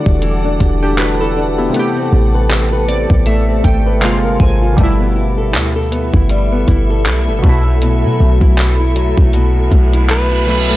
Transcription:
0.00 1.68 D3 medium
0.00 0.22 E3 medium
0.00 1.69 G3 medium
0.00 1.71 A3 medium
0.00 0.43 D4 medium
0.00 0.59 F#4 medium
0.00 0.82 A4 medium
0.00 1.70 A4 medium
0.00 1.71 F#5 medium
0.00 3.98 A5 medium
0.00 1.71 D6 medium
0.06 0.58 E1 loud
0.06 0.60 G4 medium
0.06 kick loud
0.22 3.72 E3 medium
0.22 closed hi-hat medium
0.44 1.35 D4 medium
0.60 1.70 E1 loud
0.60 0.98 G4 medium
0.60 kick medium
0.60 closed hi-hat medium
0.82 0.98 D4 medium
0.82 0.98 G4 medium
0.82 1.20 A4 medium
0.98 1.20 F#4 medium
0.98 1.58 G4 medium
0.98 1.19 B4 medium
0.98 clap loud
0.98 closed hi-hat medium
1.20 1.57 E4 medium
1.20 2.15 A4 medium
1.20 1.56 A4 medium
1.36 1.83 D4 medium
1.58 1.75 B3 medium
1.58 1.94 E4 medium
1.58 2.12 G4 medium
1.70 3.96 C3 medium
1.70 3.97 A3 medium
1.74 3.25 A3 medium
1.74 3.99 B3 medium
1.74 4.00 A4 medium
1.74 closed hi-hat medium
1.79 4.01 G4 medium
1.96 2.87 C4 medium
2.12 3.06 A1 loud
2.12 2.49 G4 medium
2.34 2.71 B4 medium
2.50 3.09 G4 medium
2.50 clap loud
2.50 closed hi-hat medium
2.72 3.85 B4 medium
2.88 3.47 C4 medium
2.88 3.24 D5 medium
2.88 closed hi-hat medium
3.10 3.62 A1 loud
3.10 3.63 G4 medium
3.10 kick medium
3.26 4.02 A3 medium
3.26 3.62 E5 medium
3.26 closed hi-hat medium
3.48 4.11 C4 medium
3.64 4.04 G#1 loud
3.64 4.11 G4 medium
3.64 4.00 G5 medium
3.64 kick medium
3.64 closed hi-hat medium
3.86 4.11 B4 medium
4.00 4.38 G1 medium
4.00 4.77 C3 medium
4.00 4.78 G#3 medium
4.00 4.78 A#3 medium
4.00 4.37 F5 medium
4.00 clap loud
4.00 closed hi-hat medium
4.05 4.79 F4 medium
4.24 4.87 A#4 medium
4.40 4.77 G#1 loud
4.40 4.87 C4 medium
4.40 4.75 G#5 medium
4.40 kick loud
4.62 4.87 F4 medium
4.73 7.37 B2 medium
4.73 7.39 G3 medium
4.78 5.56 G1 loud
4.78 6.29 G3 medium
4.78 7.41 A3 medium
4.78 10.77 A4 medium
4.78 10.77 E5 medium
4.78 10.77 B5 medium
4.78 kick loud
4.78 closed hi-hat medium
4.83 7.42 E4 medium
5.00 5.91 B3 medium
5.16 5.54 E4 medium
5.38 5.75 A4 medium
5.54 6.11 D2 medium
5.54 6.13 E4 medium
5.54 clap loud
5.54 closed hi-hat medium
5.76 6.90 A4 medium
5.92 6.51 B3 medium
5.92 closed hi-hat medium
6.14 6.66 G1 medium
6.14 6.67 E4 medium
6.14 kick loud
6.29 7.53 G3 medium
6.29 closed hi-hat medium
6.52 7.66 B3 medium
6.68 7.07 G1 medium
6.68 7.06 E4 medium
6.68 kick medium
6.68 closed hi-hat medium
6.90 7.28 A4 medium
7.06 7.30 B1 medium
7.06 8.07 E4 medium
7.06 clap loud
7.06 closed hi-hat medium
7.28 7.43 G1 medium
7.28 7.85 A4 medium
7.39 10.41 B2 medium
7.39 10.43 F#3 medium
7.44 8.06 B1 loud
7.44 7.81 B2 medium
7.44 10.45 A3 medium
7.44 kick loud
7.49 10.46 E4 medium
7.66 8.19 A3 medium
7.82 9.32 B2 medium
7.82 closed hi-hat medium
8.04 8.19 B2 medium
8.04 8.95 F#3 medium
8.20 8.41 B1 loud
8.20 8.57 A3 medium
8.41 9.14 B1 loud
8.41 8.79 E4 medium
8.41 kick medium
8.57 9.17 A3 medium
8.57 clap loud
8.57 closed hi-hat medium
8.80 9.93 E4 medium
8.96 9.55 F#3 medium
8.96 closed hi-hat medium
9.18 9.70 B1 loud
9.18 9.71 A3 medium
9.18 kick medium
9.33 10.77 B2 medium
9.33 closed hi-hat medium
9.33 reverse cymbal medium
9.56 10.47 F#3 medium
9.72 10.77 B1 loud
9.72 10.09 A3 medium
9.72 kick medium
9.72 closed hi-hat soft
9.93 10.31 E4 medium
9.93 closed hi-hat medium
10.09 10.69 A3 medium
10.09 10.77 B4 medium
10.09 clap loud
10.09 closed hi-hat medium
10.32 10.77 E4 medium
10.45 10.77 B2 medium
10.45 10.77 F#3 soft
10.45 10.77 F#3 medium
10.45 10.77 A3 medium
10.50 10.77 E4 medium
10.70 10.77 A3 medium

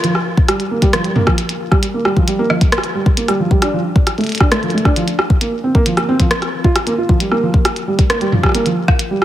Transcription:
0.04 0.11 F3 medium
0.04 closed hi-hat medium
0.15 cross-stick medium
0.37 kick loud
0.48 0.59 G3 medium
0.48 cross-stick medium
0.48 closed hi-hat medium
0.60 closed hi-hat soft
0.71 0.82 A#3 medium
0.82 0.90 G3 loud
0.82 kick loud
0.82 closed hi-hat medium
0.93 1.01 F3 medium
0.93 cross-stick loud
0.93 closed hi-hat medium
1.04 1.15 G3 medium
1.04 closed hi-hat soft
1.16 1.27 A#3 loud
1.16 mid tom medium
1.27 1.34 F3 medium
1.27 kick loud
1.27 cross-stick medium
1.38 closed hi-hat medium
1.49 closed hi-hat medium
1.72 1.82 G3 medium
1.72 kick loud
1.72 cross-stick medium
1.83 closed hi-hat medium
1.94 2.05 A#3 medium
2.05 2.13 G3 loud
2.05 cross-stick medium
2.17 2.24 F3 medium
2.17 kick loud
2.28 2.38 G3 medium
2.28 closed hi-hat medium
2.39 2.50 A#3 loud
2.50 2.58 F3 medium
2.50 cross-stick medium
2.61 kick loud
2.61 closed hi-hat medium
2.72 cross-stick loud
2.72 closed hi-hat medium
2.78 cross-stick medium
2.84 closed hi-hat soft
2.95 3.06 G3 medium
3.06 kick loud
3.17 3.28 A#3 medium
3.17 closed hi-hat medium
3.28 3.36 G3 loud
3.28 cross-stick medium
3.28 closed hi-hat medium
3.40 3.47 F3 medium
3.51 3.62 G3 medium
3.51 kick loud
3.62 3.73 D4 loud
3.62 cross-stick medium
3.62 closed hi-hat medium
3.73 3.81 F3 medium
3.96 kick loud
4.07 cross-stick medium
4.07 closed hi-hat medium
4.18 4.29 A3 medium
4.18 closed hi-hat soft
4.21 closed hi-hat soft
4.24 closed hi-hat soft
4.27 closed hi-hat soft
4.29 closed hi-hat soft
4.32 closed hi-hat soft
4.35 closed hi-hat medium
4.38 4.51 D4 medium
4.38 kick loud
4.38 cross-stick medium
4.38 closed hi-hat soft
4.52 4.59 A3 loud
4.52 cross-stick loud
4.52 closed hi-hat medium
4.63 4.70 F3 medium
4.63 closed hi-hat soft
4.70 4.85 A3 medium
4.70 closed hi-hat soft
4.78 closed hi-hat soft
4.85 4.96 D4 loud
4.85 kick loud
4.85 cross-stick medium
4.96 5.04 F3 medium
4.96 closed hi-hat medium
5.08 closed hi-hat medium
5.19 cross-stick medium
5.30 kick loud
5.41 5.52 A#3 medium
5.41 closed hi-hat medium
5.64 5.74 C4 medium
5.75 5.82 A#3 loud
5.75 kick loud
5.86 5.94 F3 medium
5.86 closed hi-hat medium
5.97 6.08 A#3 medium
5.97 cross-stick medium
5.97 closed hi-hat soft
6.09 6.19 C4 loud
6.20 6.27 F3 medium
6.20 kick loud
6.20 closed hi-hat medium
6.31 cross-stick loud
6.31 closed hi-hat medium
6.42 cross-stick soft
6.42 closed hi-hat soft
6.64 6.72 F4 medium
6.64 kick loud
6.76 cross-stick medium
6.76 closed hi-hat medium
6.87 6.91 A#3 loud
6.87 closed hi-hat medium
6.98 7.09 F4 medium
7.09 7.17 F3 medium
7.09 kick loud
7.20 7.31 G3 medium
7.20 closed hi-hat medium
7.32 7.42 A#3 loud
7.32 cross-stick medium
7.43 7.50 F3 medium
7.54 kick loud
7.65 cross-stick medium
7.65 closed hi-hat medium
7.76 closed hi-hat soft
7.88 7.98 G3 medium
7.99 kick loud
7.99 closed hi-hat soft
8.10 8.21 A#3 medium
8.10 cross-stick loud
8.10 closed hi-hat medium
8.21 8.29 G3 loud
8.21 closed hi-hat soft
8.32 8.40 F3 medium
8.32 mid tom medium
8.43 8.54 G3 medium
8.43 kick loud
8.43 cross-stick medium
8.46 cross-stick medium
8.49 cross-stick soft
8.52 8.65 A#3 loud
8.52 cross-stick soft
8.52 closed hi-hat medium
8.66 8.73 F3 medium
8.66 closed hi-hat medium
8.88 kick loud
8.88 cross-stick medium
8.99 closed hi-hat medium
9.11 9.21 G3 medium
9.22 cross-stick medium

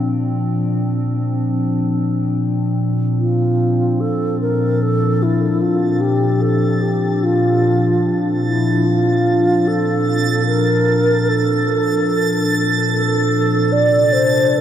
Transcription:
0.00 13.74 A#2 medium
0.00 13.73 F3 medium
0.00 14.61 C4 medium
0.00 14.61 D4 medium
3.19 4.02 F4 medium
4.00 4.40 A4 medium
4.00 14.61 A6 medium
4.41 4.84 A#4 medium
4.82 5.24 A4 medium
5.22 5.63 E4 medium
5.62 6.02 F4 medium
6.01 6.43 G4 medium
6.41 6.83 A4 medium
6.81 7.25 G4 medium
7.24 8.19 F4 medium
8.46 8.88 E4 medium
8.86 9.69 F4 medium
9.67 10.46 A4 medium
10.47 11.30 A#4 medium
11.28 12.65 A4 medium
12.92 13.74 A4 medium
13.72 14.61 C3 medium
13.72 14.14 D5 loud
14.13 14.59 C5 medium
14.30 14.61 G3 medium
14.57 14.61 A#4 medium

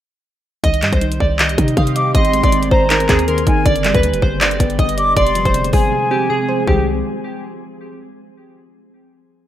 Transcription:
0.64 0.84 C2 loud
0.64 3.63 D#3 medium
0.64 1.00 D#3 loud
0.64 2.13 G3 medium
0.64 3.63 C4 medium
0.64 2.13 G4 medium
0.64 0.91 D#5 loud
0.64 kick loud
0.64 closed hi-hat medium
0.74 closed hi-hat medium
0.82 0.92 G2 loud
0.82 1.77 G3 medium
0.82 clap loud
0.82 closed hi-hat medium
0.93 1.19 C2 loud
0.93 1.19 C5 medium
0.93 kick loud
0.93 closed hi-hat soft
1.01 1.38 D#3 medium
1.01 closed hi-hat medium
1.12 closed hi-hat medium
1.20 1.57 C2 loud
1.20 1.37 D5 medium
1.20 kick loud
1.39 1.76 D#3 medium
1.39 1.75 D#5 medium
1.39 clap loud
1.39 closed hi-hat medium
1.49 closed hi-hat medium
1.58 1.76 C3 loud
1.58 2.15 D#4 medium
1.58 kick loud
1.58 closed hi-hat medium
1.68 closed hi-hat medium
1.77 2.13 C3 loud
1.77 2.14 D#3 medium
1.77 2.12 F5 medium
1.77 1.95 D#6 medium
1.77 kick medium
1.77 closed hi-hat medium
1.87 closed hi-hat medium
1.96 2.15 D#5 medium
1.96 2.14 D6 medium
1.96 closed hi-hat medium
2.15 2.42 G#1 loud
2.15 2.51 D#3 medium
2.15 3.64 A#3 medium
2.15 3.64 G#4 loud
2.15 2.42 D#5 loud
2.15 2.68 C6 loud
2.15 kick loud
2.15 closed hi-hat medium
2.25 closed hi-hat medium
2.33 3.28 G#3 medium
2.33 closed hi-hat medium
2.43 2.70 G#1 loud
2.43 2.70 D5 medium
2.43 kick loud
2.43 closed hi-hat medium
2.52 2.89 D#3 medium
2.52 closed hi-hat medium
2.63 closed hi-hat medium
2.71 3.08 G#1 loud
2.71 2.88 C5 medium
2.71 3.24 A#5 medium
2.71 kick loud
2.90 3.27 D#3 medium
2.90 3.07 A#4 medium
2.90 clap loud
2.90 closed hi-hat medium
3.00 closed hi-hat medium
3.09 3.45 D#2 loud
3.09 3.66 C4 medium
3.09 3.26 G#4 medium
3.09 kick loud
3.09 clap medium
3.09 closed hi-hat medium
3.19 closed hi-hat medium
3.28 3.66 D#3 medium
3.28 3.63 A#4 medium
3.28 3.46 C6 medium
3.28 closed hi-hat medium
3.38 closed hi-hat medium
3.47 3.65 G#1 loud
3.47 3.66 D#4 medium
3.47 3.65 G#5 medium
3.47 kick loud
3.47 closed hi-hat medium
3.65 3.93 G1 loud
3.65 4.02 D3 medium
3.65 5.15 D3 medium
3.65 5.15 G3 medium
3.65 5.15 B3 medium
3.65 5.15 G4 medium
3.65 3.93 D5 loud
3.65 kick loud
3.65 closed hi-hat medium
3.76 closed hi-hat medium
3.84 4.79 G3 medium
3.84 clap loud
3.84 closed hi-hat medium
3.94 4.15 D2 loud
3.94 4.21 B4 medium
3.94 kick loud
3.94 closed hi-hat soft
4.03 4.40 D3 medium
4.03 closed hi-hat medium
4.13 4.22 F1 loud
4.13 closed hi-hat medium
4.22 4.58 G1 loud
4.22 4.39 C5 medium
4.22 kick loud
4.41 4.78 D3 medium
4.41 4.77 D5 medium
4.41 clap loud
4.41 closed hi-hat medium
4.51 closed hi-hat medium
4.60 4.78 G1 loud
4.60 5.17 B3 medium
4.60 kick loud
4.60 closed hi-hat medium
4.70 closed hi-hat soft
4.79 5.15 G1 loud
4.79 5.17 D3 medium
4.79 5.14 D#5 medium
4.79 4.97 D#6 medium
4.79 kick medium
4.79 closed hi-hat medium
4.89 closed hi-hat medium
4.98 5.17 D5 medium
4.98 5.16 D6 medium
4.98 closed hi-hat medium
5.16 5.44 F1 loud
5.16 5.53 C3 loud
5.16 6.66 F3 medium
5.16 6.66 G#3 medium
5.16 6.66 C4 medium
5.16 6.66 G#4 loud
5.16 5.44 D5 loud
5.16 5.70 C6 loud
5.16 kick loud
5.16 closed hi-hat medium
5.27 closed hi-hat medium
5.35 6.30 F3 medium
5.35 closed hi-hat medium
5.45 5.72 F1 loud
5.45 5.72 C5 medium
5.45 kick loud
5.45 closed hi-hat medium
5.54 5.91 C3 medium
5.54 closed hi-hat medium
5.64 closed hi-hat medium
5.73 5.91 G#1 loud
5.73 6.09 G#4 medium
5.73 6.63 G#5 medium
5.73 kick loud
5.73 open hi-hat medium
5.92 6.29 C3 loud
6.11 6.66 C4 medium
6.11 6.28 G4 medium
6.30 6.66 C3 medium
6.30 6.65 G#4 medium
6.49 6.67 C5 medium
6.67 7.03 C2 loud
6.67 6.85 C3 medium
6.67 6.85 D#3 medium
6.67 6.85 G3 medium
6.67 6.85 C4 medium
6.67 6.85 G4 medium
6.67 6.85 G5 medium
6.67 kick loud

